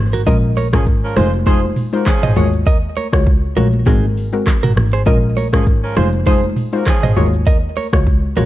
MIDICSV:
0, 0, Header, 1, 6, 480
1, 0, Start_track
1, 0, Key_signature, -5, "minor"
1, 0, Tempo, 600000
1, 214, Time_signature, 4, 2, 24, 8
1, 6764, End_track
2, 0, Start_track
2, 0, Title_t, "Clean electric guitar"
2, 0, Program_c, 0, 27
2, 106, Note_on_c, 0, 70, 74
2, 112, Note_on_c, 0, 66, 61
2, 171, Note_off_c, 0, 70, 0
2, 175, Note_off_c, 0, 66, 0
2, 214, Note_on_c, 0, 75, 112
2, 220, Note_on_c, 0, 70, 87
2, 293, Note_off_c, 0, 75, 0
2, 297, Note_off_c, 0, 70, 0
2, 455, Note_on_c, 0, 73, 77
2, 462, Note_on_c, 0, 70, 60
2, 534, Note_off_c, 0, 73, 0
2, 538, Note_off_c, 0, 70, 0
2, 934, Note_on_c, 0, 72, 77
2, 941, Note_on_c, 0, 68, 59
2, 1013, Note_off_c, 0, 72, 0
2, 1018, Note_off_c, 0, 68, 0
2, 1174, Note_on_c, 0, 72, 89
2, 1180, Note_on_c, 0, 68, 70
2, 1318, Note_off_c, 0, 72, 0
2, 1322, Note_off_c, 0, 68, 0
2, 1786, Note_on_c, 0, 75, 77
2, 1792, Note_on_c, 0, 72, 56
2, 1850, Note_off_c, 0, 75, 0
2, 1855, Note_off_c, 0, 72, 0
2, 1893, Note_on_c, 0, 73, 82
2, 1900, Note_on_c, 0, 70, 67
2, 1973, Note_off_c, 0, 73, 0
2, 1977, Note_off_c, 0, 70, 0
2, 2133, Note_on_c, 0, 75, 106
2, 2139, Note_on_c, 0, 70, 81
2, 2213, Note_off_c, 0, 75, 0
2, 2217, Note_off_c, 0, 70, 0
2, 2374, Note_on_c, 0, 73, 75
2, 2380, Note_on_c, 0, 70, 55
2, 2453, Note_off_c, 0, 73, 0
2, 2457, Note_off_c, 0, 70, 0
2, 2853, Note_on_c, 0, 70, 85
2, 2860, Note_on_c, 0, 66, 66
2, 2932, Note_off_c, 0, 70, 0
2, 2937, Note_off_c, 0, 66, 0
2, 3094, Note_on_c, 0, 68, 84
2, 3100, Note_on_c, 0, 63, 66
2, 3238, Note_off_c, 0, 68, 0
2, 3242, Note_off_c, 0, 63, 0
2, 3705, Note_on_c, 0, 70, 76
2, 3712, Note_on_c, 0, 66, 61
2, 3770, Note_off_c, 0, 70, 0
2, 3775, Note_off_c, 0, 66, 0
2, 3946, Note_on_c, 0, 72, 74
2, 3952, Note_on_c, 0, 68, 58
2, 4011, Note_off_c, 0, 72, 0
2, 4015, Note_off_c, 0, 68, 0
2, 4053, Note_on_c, 0, 75, 108
2, 4060, Note_on_c, 0, 70, 89
2, 4133, Note_off_c, 0, 75, 0
2, 4137, Note_off_c, 0, 70, 0
2, 4294, Note_on_c, 0, 73, 74
2, 4301, Note_on_c, 0, 70, 58
2, 4373, Note_off_c, 0, 73, 0
2, 4378, Note_off_c, 0, 70, 0
2, 4774, Note_on_c, 0, 72, 79
2, 4781, Note_on_c, 0, 68, 61
2, 4853, Note_off_c, 0, 72, 0
2, 4858, Note_off_c, 0, 68, 0
2, 5015, Note_on_c, 0, 72, 91
2, 5021, Note_on_c, 0, 68, 67
2, 5158, Note_off_c, 0, 72, 0
2, 5163, Note_off_c, 0, 68, 0
2, 5626, Note_on_c, 0, 75, 77
2, 5633, Note_on_c, 0, 72, 59
2, 5691, Note_off_c, 0, 75, 0
2, 5695, Note_off_c, 0, 72, 0
2, 5733, Note_on_c, 0, 73, 81
2, 5740, Note_on_c, 0, 70, 65
2, 5812, Note_off_c, 0, 73, 0
2, 5818, Note_off_c, 0, 70, 0
2, 5974, Note_on_c, 0, 75, 104
2, 5979, Note_on_c, 0, 70, 82
2, 6053, Note_off_c, 0, 75, 0
2, 6057, Note_off_c, 0, 70, 0
2, 6214, Note_on_c, 0, 73, 75
2, 6220, Note_on_c, 0, 70, 57
2, 6293, Note_off_c, 0, 73, 0
2, 6297, Note_off_c, 0, 70, 0
2, 6695, Note_on_c, 0, 70, 88
2, 6701, Note_on_c, 0, 66, 69
2, 6764, Note_off_c, 0, 66, 0
2, 6764, Note_off_c, 0, 70, 0
2, 6764, End_track
3, 0, Start_track
3, 0, Title_t, "Synth pluck"
3, 0, Program_c, 1, 84
3, 211, Note_on_c, 1, 56, 95
3, 212, Note_on_c, 1, 61, 91
3, 214, Note_on_c, 1, 65, 92
3, 215, Note_on_c, 1, 70, 109
3, 552, Note_off_c, 1, 56, 0
3, 553, Note_off_c, 1, 61, 0
3, 554, Note_off_c, 1, 65, 0
3, 555, Note_off_c, 1, 70, 0
3, 581, Note_on_c, 1, 56, 82
3, 582, Note_on_c, 1, 61, 71
3, 584, Note_on_c, 1, 65, 69
3, 587, Note_on_c, 1, 70, 88
3, 905, Note_off_c, 1, 56, 0
3, 906, Note_off_c, 1, 61, 0
3, 907, Note_off_c, 1, 65, 0
3, 908, Note_off_c, 1, 70, 0
3, 930, Note_on_c, 1, 56, 78
3, 931, Note_on_c, 1, 63, 74
3, 933, Note_on_c, 1, 65, 71
3, 933, Note_on_c, 1, 72, 87
3, 1154, Note_off_c, 1, 56, 0
3, 1155, Note_off_c, 1, 63, 0
3, 1156, Note_off_c, 1, 65, 0
3, 1156, Note_off_c, 1, 72, 0
3, 1170, Note_on_c, 1, 56, 94
3, 1172, Note_on_c, 1, 63, 89
3, 1174, Note_on_c, 1, 65, 88
3, 1174, Note_on_c, 1, 72, 110
3, 1512, Note_off_c, 1, 56, 0
3, 1513, Note_off_c, 1, 63, 0
3, 1514, Note_off_c, 1, 65, 0
3, 1514, Note_off_c, 1, 72, 0
3, 1542, Note_on_c, 1, 56, 76
3, 1543, Note_on_c, 1, 63, 69
3, 1545, Note_on_c, 1, 65, 70
3, 1546, Note_on_c, 1, 72, 91
3, 1694, Note_off_c, 1, 56, 0
3, 1695, Note_off_c, 1, 63, 0
3, 1696, Note_off_c, 1, 65, 0
3, 1696, Note_off_c, 1, 72, 0
3, 1889, Note_on_c, 1, 56, 101
3, 1891, Note_on_c, 1, 65, 89
3, 1893, Note_on_c, 1, 66, 86
3, 1894, Note_on_c, 1, 73, 111
3, 2114, Note_off_c, 1, 56, 0
3, 2115, Note_off_c, 1, 65, 0
3, 2116, Note_off_c, 1, 66, 0
3, 2117, Note_off_c, 1, 73, 0
3, 2500, Note_on_c, 1, 56, 78
3, 2502, Note_on_c, 1, 65, 75
3, 2504, Note_on_c, 1, 66, 73
3, 2505, Note_on_c, 1, 73, 89
3, 2825, Note_off_c, 1, 56, 0
3, 2826, Note_off_c, 1, 65, 0
3, 2827, Note_off_c, 1, 66, 0
3, 2827, Note_off_c, 1, 73, 0
3, 2850, Note_on_c, 1, 56, 79
3, 2851, Note_on_c, 1, 65, 71
3, 2853, Note_on_c, 1, 66, 72
3, 2854, Note_on_c, 1, 73, 88
3, 3074, Note_off_c, 1, 56, 0
3, 3075, Note_off_c, 1, 65, 0
3, 3076, Note_off_c, 1, 66, 0
3, 3076, Note_off_c, 1, 73, 0
3, 3088, Note_on_c, 1, 56, 98
3, 3089, Note_on_c, 1, 60, 91
3, 3091, Note_on_c, 1, 66, 91
3, 3093, Note_on_c, 1, 70, 108
3, 3431, Note_off_c, 1, 56, 0
3, 3432, Note_off_c, 1, 60, 0
3, 3433, Note_off_c, 1, 66, 0
3, 3434, Note_off_c, 1, 70, 0
3, 3461, Note_on_c, 1, 56, 79
3, 3463, Note_on_c, 1, 60, 73
3, 3465, Note_on_c, 1, 66, 73
3, 3467, Note_on_c, 1, 70, 85
3, 3614, Note_off_c, 1, 56, 0
3, 3615, Note_off_c, 1, 60, 0
3, 3616, Note_off_c, 1, 66, 0
3, 3616, Note_off_c, 1, 70, 0
3, 4047, Note_on_c, 1, 56, 96
3, 4048, Note_on_c, 1, 61, 88
3, 4049, Note_on_c, 1, 65, 90
3, 4051, Note_on_c, 1, 70, 109
3, 4391, Note_off_c, 1, 56, 0
3, 4391, Note_off_c, 1, 61, 0
3, 4392, Note_off_c, 1, 65, 0
3, 4393, Note_off_c, 1, 70, 0
3, 4421, Note_on_c, 1, 56, 80
3, 4423, Note_on_c, 1, 61, 72
3, 4424, Note_on_c, 1, 65, 72
3, 4426, Note_on_c, 1, 70, 87
3, 4745, Note_off_c, 1, 56, 0
3, 4746, Note_off_c, 1, 61, 0
3, 4747, Note_off_c, 1, 65, 0
3, 4748, Note_off_c, 1, 70, 0
3, 4769, Note_on_c, 1, 56, 77
3, 4771, Note_on_c, 1, 63, 72
3, 4772, Note_on_c, 1, 65, 72
3, 4773, Note_on_c, 1, 72, 87
3, 4994, Note_off_c, 1, 56, 0
3, 4995, Note_off_c, 1, 63, 0
3, 4995, Note_off_c, 1, 65, 0
3, 4996, Note_off_c, 1, 72, 0
3, 5010, Note_on_c, 1, 56, 100
3, 5011, Note_on_c, 1, 63, 92
3, 5013, Note_on_c, 1, 65, 88
3, 5014, Note_on_c, 1, 72, 104
3, 5352, Note_off_c, 1, 56, 0
3, 5353, Note_off_c, 1, 63, 0
3, 5354, Note_off_c, 1, 65, 0
3, 5354, Note_off_c, 1, 72, 0
3, 5381, Note_on_c, 1, 56, 76
3, 5382, Note_on_c, 1, 63, 71
3, 5385, Note_on_c, 1, 65, 73
3, 5386, Note_on_c, 1, 72, 89
3, 5533, Note_off_c, 1, 56, 0
3, 5534, Note_off_c, 1, 63, 0
3, 5536, Note_off_c, 1, 65, 0
3, 5536, Note_off_c, 1, 72, 0
3, 5732, Note_on_c, 1, 56, 98
3, 5733, Note_on_c, 1, 65, 87
3, 5735, Note_on_c, 1, 66, 87
3, 5736, Note_on_c, 1, 73, 107
3, 5956, Note_off_c, 1, 56, 0
3, 5956, Note_off_c, 1, 65, 0
3, 5957, Note_off_c, 1, 66, 0
3, 5958, Note_off_c, 1, 73, 0
3, 6342, Note_on_c, 1, 56, 83
3, 6344, Note_on_c, 1, 65, 72
3, 6345, Note_on_c, 1, 66, 71
3, 6346, Note_on_c, 1, 73, 90
3, 6666, Note_off_c, 1, 56, 0
3, 6667, Note_off_c, 1, 65, 0
3, 6667, Note_off_c, 1, 66, 0
3, 6668, Note_off_c, 1, 73, 0
3, 6690, Note_on_c, 1, 56, 75
3, 6692, Note_on_c, 1, 65, 72
3, 6694, Note_on_c, 1, 66, 74
3, 6695, Note_on_c, 1, 73, 88
3, 6764, Note_off_c, 1, 56, 0
3, 6764, Note_off_c, 1, 65, 0
3, 6764, Note_off_c, 1, 66, 0
3, 6764, Note_off_c, 1, 73, 0
3, 6764, End_track
4, 0, Start_track
4, 0, Title_t, "Horn section"
4, 0, Program_c, 2, 61
4, 584, Note_on_c, 2, 53, 76
4, 585, Note_on_c, 2, 61, 83
4, 585, Note_on_c, 2, 68, 91
4, 671, Note_off_c, 2, 53, 0
4, 672, Note_off_c, 2, 61, 0
4, 672, Note_off_c, 2, 68, 0
4, 824, Note_on_c, 2, 53, 86
4, 825, Note_on_c, 2, 61, 86
4, 825, Note_on_c, 2, 70, 93
4, 911, Note_off_c, 2, 53, 0
4, 912, Note_off_c, 2, 61, 0
4, 912, Note_off_c, 2, 70, 0
4, 933, Note_on_c, 2, 65, 90
4, 933, Note_on_c, 2, 72, 99
4, 934, Note_on_c, 2, 56, 88
4, 1039, Note_off_c, 2, 56, 0
4, 1039, Note_off_c, 2, 65, 0
4, 1039, Note_off_c, 2, 72, 0
4, 1173, Note_on_c, 2, 63, 88
4, 1174, Note_on_c, 2, 53, 86
4, 1174, Note_on_c, 2, 68, 95
4, 1279, Note_off_c, 2, 63, 0
4, 1280, Note_off_c, 2, 53, 0
4, 1280, Note_off_c, 2, 68, 0
4, 1546, Note_on_c, 2, 70, 80
4, 1547, Note_on_c, 2, 66, 73
4, 1548, Note_on_c, 2, 58, 75
4, 1632, Note_off_c, 2, 70, 0
4, 1633, Note_off_c, 2, 58, 0
4, 1633, Note_off_c, 2, 66, 0
4, 1653, Note_on_c, 2, 53, 89
4, 1654, Note_on_c, 2, 61, 89
4, 1655, Note_on_c, 2, 68, 99
4, 2003, Note_off_c, 2, 53, 0
4, 2004, Note_off_c, 2, 61, 0
4, 2004, Note_off_c, 2, 68, 0
4, 4425, Note_on_c, 2, 53, 81
4, 4425, Note_on_c, 2, 61, 80
4, 4425, Note_on_c, 2, 68, 87
4, 4511, Note_off_c, 2, 53, 0
4, 4512, Note_off_c, 2, 61, 0
4, 4512, Note_off_c, 2, 68, 0
4, 4664, Note_on_c, 2, 53, 84
4, 4664, Note_on_c, 2, 61, 86
4, 4665, Note_on_c, 2, 70, 95
4, 4751, Note_off_c, 2, 53, 0
4, 4751, Note_off_c, 2, 61, 0
4, 4752, Note_off_c, 2, 70, 0
4, 4772, Note_on_c, 2, 65, 84
4, 4772, Note_on_c, 2, 72, 96
4, 4773, Note_on_c, 2, 56, 90
4, 4878, Note_off_c, 2, 65, 0
4, 4878, Note_off_c, 2, 72, 0
4, 4879, Note_off_c, 2, 56, 0
4, 5015, Note_on_c, 2, 53, 88
4, 5015, Note_on_c, 2, 63, 89
4, 5015, Note_on_c, 2, 68, 98
4, 5120, Note_off_c, 2, 53, 0
4, 5120, Note_off_c, 2, 63, 0
4, 5120, Note_off_c, 2, 68, 0
4, 5388, Note_on_c, 2, 66, 76
4, 5389, Note_on_c, 2, 58, 75
4, 5389, Note_on_c, 2, 70, 81
4, 5474, Note_off_c, 2, 58, 0
4, 5474, Note_off_c, 2, 66, 0
4, 5474, Note_off_c, 2, 70, 0
4, 5497, Note_on_c, 2, 61, 84
4, 5497, Note_on_c, 2, 68, 101
4, 5498, Note_on_c, 2, 53, 89
4, 5845, Note_off_c, 2, 53, 0
4, 5845, Note_off_c, 2, 61, 0
4, 5845, Note_off_c, 2, 68, 0
4, 6764, End_track
5, 0, Start_track
5, 0, Title_t, "Double bass"
5, 0, Program_c, 3, 43
5, 104, Note_on_c, 3, 32, 84
5, 184, Note_off_c, 3, 32, 0
5, 214, Note_on_c, 3, 34, 120
5, 579, Note_off_c, 3, 34, 0
5, 584, Note_on_c, 3, 32, 93
5, 838, Note_off_c, 3, 32, 0
5, 934, Note_on_c, 3, 29, 102
5, 1283, Note_off_c, 3, 29, 0
5, 1786, Note_on_c, 3, 32, 100
5, 1864, Note_off_c, 3, 32, 0
5, 1893, Note_on_c, 3, 39, 103
5, 2243, Note_off_c, 3, 39, 0
5, 2504, Note_on_c, 3, 37, 96
5, 2583, Note_off_c, 3, 37, 0
5, 2853, Note_on_c, 3, 34, 102
5, 3028, Note_off_c, 3, 34, 0
5, 3092, Note_on_c, 3, 32, 106
5, 3363, Note_off_c, 3, 32, 0
5, 3703, Note_on_c, 3, 32, 89
5, 3783, Note_off_c, 3, 32, 0
5, 3811, Note_on_c, 3, 32, 109
5, 3908, Note_off_c, 3, 32, 0
5, 4053, Note_on_c, 3, 34, 108
5, 4324, Note_off_c, 3, 34, 0
5, 4425, Note_on_c, 3, 32, 88
5, 4678, Note_off_c, 3, 32, 0
5, 4772, Note_on_c, 3, 29, 102
5, 5122, Note_off_c, 3, 29, 0
5, 5625, Note_on_c, 3, 32, 89
5, 5704, Note_off_c, 3, 32, 0
5, 5734, Note_on_c, 3, 39, 106
5, 6083, Note_off_c, 3, 39, 0
5, 6344, Note_on_c, 3, 37, 96
5, 6423, Note_off_c, 3, 37, 0
5, 6694, Note_on_c, 3, 34, 99
5, 6764, Note_off_c, 3, 34, 0
5, 6764, End_track
6, 0, Start_track
6, 0, Title_t, "Drums"
6, 104, Note_on_c, 9, 82, 85
6, 184, Note_off_c, 9, 82, 0
6, 213, Note_on_c, 9, 82, 80
6, 214, Note_on_c, 9, 36, 111
6, 293, Note_off_c, 9, 82, 0
6, 294, Note_off_c, 9, 36, 0
6, 452, Note_on_c, 9, 46, 57
6, 452, Note_on_c, 9, 82, 57
6, 461, Note_on_c, 9, 63, 69
6, 532, Note_off_c, 9, 46, 0
6, 532, Note_off_c, 9, 82, 0
6, 541, Note_off_c, 9, 63, 0
6, 583, Note_on_c, 9, 82, 71
6, 584, Note_on_c, 9, 36, 101
6, 587, Note_on_c, 9, 37, 123
6, 663, Note_off_c, 9, 82, 0
6, 664, Note_off_c, 9, 36, 0
6, 667, Note_off_c, 9, 37, 0
6, 688, Note_on_c, 9, 82, 72
6, 694, Note_on_c, 9, 36, 97
6, 768, Note_off_c, 9, 82, 0
6, 774, Note_off_c, 9, 36, 0
6, 929, Note_on_c, 9, 82, 57
6, 932, Note_on_c, 9, 37, 91
6, 935, Note_on_c, 9, 63, 88
6, 935, Note_on_c, 9, 64, 83
6, 1009, Note_off_c, 9, 82, 0
6, 1012, Note_off_c, 9, 37, 0
6, 1015, Note_off_c, 9, 63, 0
6, 1015, Note_off_c, 9, 64, 0
6, 1059, Note_on_c, 9, 82, 84
6, 1071, Note_on_c, 9, 63, 76
6, 1139, Note_off_c, 9, 82, 0
6, 1151, Note_off_c, 9, 63, 0
6, 1172, Note_on_c, 9, 36, 107
6, 1175, Note_on_c, 9, 82, 74
6, 1179, Note_on_c, 9, 64, 75
6, 1252, Note_off_c, 9, 36, 0
6, 1255, Note_off_c, 9, 82, 0
6, 1259, Note_off_c, 9, 64, 0
6, 1311, Note_on_c, 9, 63, 72
6, 1391, Note_off_c, 9, 63, 0
6, 1411, Note_on_c, 9, 45, 76
6, 1418, Note_on_c, 9, 46, 56
6, 1418, Note_on_c, 9, 82, 56
6, 1491, Note_off_c, 9, 45, 0
6, 1498, Note_off_c, 9, 46, 0
6, 1498, Note_off_c, 9, 82, 0
6, 1536, Note_on_c, 9, 82, 71
6, 1616, Note_off_c, 9, 82, 0
6, 1651, Note_on_c, 9, 37, 88
6, 1651, Note_on_c, 9, 39, 88
6, 1653, Note_on_c, 9, 36, 98
6, 1654, Note_on_c, 9, 82, 82
6, 1662, Note_on_c, 9, 64, 76
6, 1731, Note_off_c, 9, 37, 0
6, 1731, Note_off_c, 9, 39, 0
6, 1733, Note_off_c, 9, 36, 0
6, 1734, Note_off_c, 9, 82, 0
6, 1742, Note_off_c, 9, 64, 0
6, 1787, Note_on_c, 9, 45, 96
6, 1867, Note_off_c, 9, 45, 0
6, 1893, Note_on_c, 9, 82, 60
6, 1901, Note_on_c, 9, 63, 77
6, 1901, Note_on_c, 9, 64, 74
6, 1973, Note_off_c, 9, 82, 0
6, 1981, Note_off_c, 9, 63, 0
6, 1981, Note_off_c, 9, 64, 0
6, 2023, Note_on_c, 9, 82, 86
6, 2103, Note_off_c, 9, 82, 0
6, 2131, Note_on_c, 9, 82, 80
6, 2133, Note_on_c, 9, 36, 116
6, 2211, Note_off_c, 9, 82, 0
6, 2213, Note_off_c, 9, 36, 0
6, 2373, Note_on_c, 9, 82, 56
6, 2379, Note_on_c, 9, 63, 66
6, 2453, Note_off_c, 9, 82, 0
6, 2459, Note_off_c, 9, 63, 0
6, 2503, Note_on_c, 9, 82, 66
6, 2504, Note_on_c, 9, 36, 102
6, 2507, Note_on_c, 9, 37, 124
6, 2583, Note_off_c, 9, 82, 0
6, 2584, Note_off_c, 9, 36, 0
6, 2587, Note_off_c, 9, 37, 0
6, 2609, Note_on_c, 9, 82, 73
6, 2613, Note_on_c, 9, 36, 97
6, 2689, Note_off_c, 9, 82, 0
6, 2693, Note_off_c, 9, 36, 0
6, 2849, Note_on_c, 9, 82, 56
6, 2852, Note_on_c, 9, 63, 86
6, 2852, Note_on_c, 9, 64, 83
6, 2929, Note_off_c, 9, 82, 0
6, 2932, Note_off_c, 9, 63, 0
6, 2932, Note_off_c, 9, 64, 0
6, 2979, Note_on_c, 9, 82, 85
6, 2989, Note_on_c, 9, 63, 73
6, 3059, Note_off_c, 9, 82, 0
6, 3069, Note_off_c, 9, 63, 0
6, 3092, Note_on_c, 9, 36, 107
6, 3097, Note_on_c, 9, 64, 80
6, 3097, Note_on_c, 9, 82, 74
6, 3172, Note_off_c, 9, 36, 0
6, 3177, Note_off_c, 9, 64, 0
6, 3177, Note_off_c, 9, 82, 0
6, 3232, Note_on_c, 9, 63, 73
6, 3312, Note_off_c, 9, 63, 0
6, 3339, Note_on_c, 9, 46, 55
6, 3339, Note_on_c, 9, 82, 55
6, 3419, Note_off_c, 9, 46, 0
6, 3419, Note_off_c, 9, 82, 0
6, 3459, Note_on_c, 9, 82, 72
6, 3539, Note_off_c, 9, 82, 0
6, 3574, Note_on_c, 9, 36, 95
6, 3575, Note_on_c, 9, 37, 89
6, 3575, Note_on_c, 9, 39, 88
6, 3578, Note_on_c, 9, 82, 80
6, 3584, Note_on_c, 9, 64, 72
6, 3654, Note_off_c, 9, 36, 0
6, 3655, Note_off_c, 9, 37, 0
6, 3655, Note_off_c, 9, 39, 0
6, 3658, Note_off_c, 9, 82, 0
6, 3664, Note_off_c, 9, 64, 0
6, 3712, Note_on_c, 9, 45, 98
6, 3792, Note_off_c, 9, 45, 0
6, 3816, Note_on_c, 9, 82, 60
6, 3818, Note_on_c, 9, 37, 101
6, 3822, Note_on_c, 9, 63, 78
6, 3822, Note_on_c, 9, 64, 76
6, 3896, Note_off_c, 9, 82, 0
6, 3898, Note_off_c, 9, 37, 0
6, 3902, Note_off_c, 9, 63, 0
6, 3902, Note_off_c, 9, 64, 0
6, 3945, Note_on_c, 9, 82, 81
6, 4025, Note_off_c, 9, 82, 0
6, 4054, Note_on_c, 9, 36, 111
6, 4054, Note_on_c, 9, 82, 82
6, 4134, Note_off_c, 9, 36, 0
6, 4134, Note_off_c, 9, 82, 0
6, 4294, Note_on_c, 9, 46, 58
6, 4294, Note_on_c, 9, 82, 58
6, 4299, Note_on_c, 9, 63, 68
6, 4374, Note_off_c, 9, 46, 0
6, 4374, Note_off_c, 9, 82, 0
6, 4379, Note_off_c, 9, 63, 0
6, 4424, Note_on_c, 9, 36, 98
6, 4425, Note_on_c, 9, 82, 70
6, 4428, Note_on_c, 9, 37, 119
6, 4504, Note_off_c, 9, 36, 0
6, 4505, Note_off_c, 9, 82, 0
6, 4508, Note_off_c, 9, 37, 0
6, 4531, Note_on_c, 9, 82, 73
6, 4534, Note_on_c, 9, 36, 98
6, 4611, Note_off_c, 9, 82, 0
6, 4614, Note_off_c, 9, 36, 0
6, 4771, Note_on_c, 9, 82, 56
6, 4774, Note_on_c, 9, 37, 90
6, 4774, Note_on_c, 9, 63, 86
6, 4774, Note_on_c, 9, 64, 83
6, 4851, Note_off_c, 9, 82, 0
6, 4854, Note_off_c, 9, 37, 0
6, 4854, Note_off_c, 9, 63, 0
6, 4854, Note_off_c, 9, 64, 0
6, 4900, Note_on_c, 9, 82, 82
6, 4911, Note_on_c, 9, 63, 76
6, 4980, Note_off_c, 9, 82, 0
6, 4991, Note_off_c, 9, 63, 0
6, 5013, Note_on_c, 9, 36, 108
6, 5017, Note_on_c, 9, 82, 69
6, 5018, Note_on_c, 9, 64, 74
6, 5093, Note_off_c, 9, 36, 0
6, 5097, Note_off_c, 9, 82, 0
6, 5098, Note_off_c, 9, 64, 0
6, 5150, Note_on_c, 9, 63, 73
6, 5230, Note_off_c, 9, 63, 0
6, 5251, Note_on_c, 9, 45, 75
6, 5259, Note_on_c, 9, 46, 55
6, 5259, Note_on_c, 9, 82, 53
6, 5331, Note_off_c, 9, 45, 0
6, 5339, Note_off_c, 9, 46, 0
6, 5339, Note_off_c, 9, 82, 0
6, 5378, Note_on_c, 9, 82, 73
6, 5458, Note_off_c, 9, 82, 0
6, 5492, Note_on_c, 9, 37, 87
6, 5492, Note_on_c, 9, 39, 89
6, 5493, Note_on_c, 9, 36, 99
6, 5495, Note_on_c, 9, 82, 79
6, 5503, Note_on_c, 9, 64, 75
6, 5572, Note_off_c, 9, 37, 0
6, 5572, Note_off_c, 9, 39, 0
6, 5573, Note_off_c, 9, 36, 0
6, 5575, Note_off_c, 9, 82, 0
6, 5583, Note_off_c, 9, 64, 0
6, 5628, Note_on_c, 9, 45, 96
6, 5708, Note_off_c, 9, 45, 0
6, 5735, Note_on_c, 9, 82, 63
6, 5742, Note_on_c, 9, 63, 79
6, 5742, Note_on_c, 9, 64, 75
6, 5815, Note_off_c, 9, 82, 0
6, 5822, Note_off_c, 9, 63, 0
6, 5822, Note_off_c, 9, 64, 0
6, 5865, Note_on_c, 9, 82, 83
6, 5945, Note_off_c, 9, 82, 0
6, 5973, Note_on_c, 9, 36, 113
6, 5973, Note_on_c, 9, 82, 80
6, 6053, Note_off_c, 9, 36, 0
6, 6053, Note_off_c, 9, 82, 0
6, 6212, Note_on_c, 9, 46, 55
6, 6212, Note_on_c, 9, 82, 57
6, 6219, Note_on_c, 9, 63, 66
6, 6292, Note_off_c, 9, 46, 0
6, 6292, Note_off_c, 9, 82, 0
6, 6299, Note_off_c, 9, 63, 0
6, 6343, Note_on_c, 9, 82, 70
6, 6344, Note_on_c, 9, 36, 97
6, 6346, Note_on_c, 9, 37, 127
6, 6423, Note_off_c, 9, 82, 0
6, 6424, Note_off_c, 9, 36, 0
6, 6426, Note_off_c, 9, 37, 0
6, 6449, Note_on_c, 9, 82, 75
6, 6454, Note_on_c, 9, 36, 95
6, 6529, Note_off_c, 9, 82, 0
6, 6534, Note_off_c, 9, 36, 0
6, 6690, Note_on_c, 9, 82, 57
6, 6694, Note_on_c, 9, 63, 86
6, 6694, Note_on_c, 9, 64, 85
6, 6764, Note_off_c, 9, 63, 0
6, 6764, Note_off_c, 9, 64, 0
6, 6764, Note_off_c, 9, 82, 0
6, 6764, End_track
0, 0, End_of_file